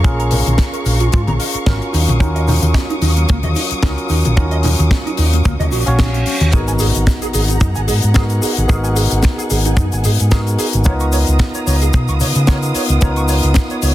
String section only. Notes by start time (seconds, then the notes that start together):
Already playing: G#4 F5 A#5 C#6
1.94 F#3 D#6
6.53 G#4 F#5 A#5
8.69 G#5
10.85 B3 F5 A#5 D#6